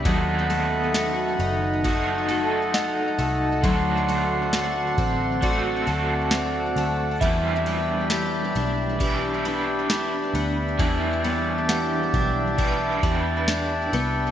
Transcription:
Already playing: twelve-string acoustic guitar B3 D4 G4, harmonium B5
0.03 picked electric bass D#2, overdriven electric guitar D#3 B3 D#4, twelve-string acoustic guitar F#3, harmonium A4 D#5 F#5, kick, ride
0.08 overdriven electric guitar F#4 A4
0.50 twelve-string acoustic guitar A3, ride
0.94 twelve-string acoustic guitar F#4, snare, ride, tambourine
1.39 picked electric bass F#1, twelve-string acoustic guitar D#4, ride
1.84 overdriven electric guitar B3 D#4 F#4 A4, twelve-string acoustic guitar F#4, harmonium A5, kick, ride
2.29 twelve-string acoustic guitar A3, overdriven electric guitar D#4 F#4 A4, ride
2.74 twelve-string acoustic guitar D#4, synth bell D#5 F#5, snare, ride, tambourine
3.19 picked electric bass C2, twelve-string acoustic guitar A3, ride
3.61 picked electric bass D2, overdriven electric guitar D3 A3 C4, twelve-string acoustic guitar F#3, harmonium D4 A4 C6, kick, ride
3.66 overdriven electric guitar F#4 A4
4.08 twelve-string acoustic guitar A3, ride
4.53 twelve-string acoustic guitar F#4, snare, ride, tambourine
4.98 picked electric bass A1, twelve-string acoustic guitar C4, kick, ride
5.41 overdriven electric guitar A3 C4 F#4 A4, twelve-string acoustic guitar F#4, synth bell D5, harmonium D5, kick, ride
5.86 picked electric bass D2, twelve-string acoustic guitar A3, overdriven electric guitar C4 F#4 A4, ride
6.31 twelve-string acoustic guitar C4, snare, ride, tambourine
6.76 picked electric bass D2, twelve-string acoustic guitar A3, ride
7.20 picked electric bass E2, overdriven electric guitar E3 G3 D4, twelve-string acoustic guitar E3, harmonium G4 E5 B5, synth bell E5, kick, ride
7.25 overdriven electric guitar E4 B4
7.66 twelve-string acoustic guitar B3, ride
8.10 twelve-string acoustic guitar G4, snare, ride, tambourine
8.55 picked electric bass B1, twelve-string acoustic guitar D4, ride
8.99 overdriven electric guitar G3 D4 E4 B4, twelve-string acoustic guitar G4, kick, ride
9.44 twelve-string acoustic guitar B3, overdriven electric guitar D4 E4 B4, ride
9.90 twelve-string acoustic guitar D4, snare, ride, tambourine
10.34 picked electric bass D2, twelve-string acoustic guitar B3, ride
10.78 picked electric bass E2, overdriven electric guitar E3 G3 D4, twelve-string acoustic guitar E3, harmonium A5, kick, ride
10.82 overdriven electric guitar E4 B4
11.24 twelve-string acoustic guitar B3, ride
11.69 twelve-string acoustic guitar G4, synth bell F#5, snare, ride, tambourine
12.14 picked electric bass B1, twelve-string acoustic guitar D4, kick, ride
12.57 overdriven electric guitar G3 D4 E4 B4, twelve-string acoustic guitar G4, synth bell E5, kick, ride
13.02 picked electric bass E2, twelve-string acoustic guitar B3, overdriven electric guitar D4 E4 B4, kick, ride
13.48 twelve-string acoustic guitar D4, snare, ride, tambourine
13.93 picked electric bass C2, twelve-string acoustic guitar B3, ride

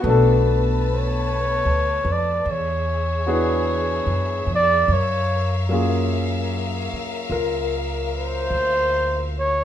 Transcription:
0.00 upright bass B1, grand piano A3 B3 F#4
0.05 grand piano D4, string section B4 A5
0.10 grand piano A4
0.93 flugelhorn C#5
1.65 upright bass D2
2.05 upright bass F2
2.12 flugelhorn D5
2.44 upright bass E2, string section G#4 E5
2.51 flugelhorn C#5
3.26 grand piano B3 D4 E4 F#4 G#4
4.06 upright bass F#2
4.46 upright bass F2
4.55 flugelhorn D5
4.88 upright bass F#2, string section A#4 F5
4.93 flugelhorn C#5
5.69 grand piano F#3 A#3 C#4 F4
5.74 grand piano G#4
6.93 muted upright bass stroke
7.30 upright bass C#2, grand piano F4 A#4
8.17 flugelhorn C5
8.50 upright bass D2
9.39 flugelhorn C#5

